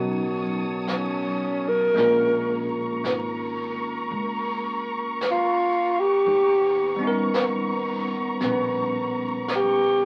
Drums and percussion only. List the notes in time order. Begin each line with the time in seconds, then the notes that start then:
0.87 brush sweep, snare, hi-hat pedal
1.97 brush sweep, snare
3.04 brush sweep, snare, hi-hat pedal
4.13 brush sweep
5.21 brush sweep, snare, hi-hat pedal
6.27 brush sweep
7.34 brush sweep, snare, hi-hat pedal
8.40 brush sweep, snare
9.48 brush sweep, snare, hi-hat pedal